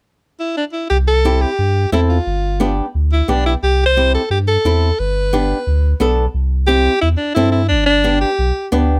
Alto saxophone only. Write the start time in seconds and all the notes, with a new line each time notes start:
0.39 E4
0.57 D4
0.72 E4
0.90 G4
1.07 A4
1.41 G4
1.92 E4
2.09 F4
3.12 E4
3.30 D4
3.46 E4
3.63 G4
3.86 C5
4.14 A4
4.31 G4
4.48 A4
4.99 B4
6.67 G4
7.01 E4
7.17 D4
7.34 E4
7.52 E4
7.68 D4
7.86 D4
8.21 G4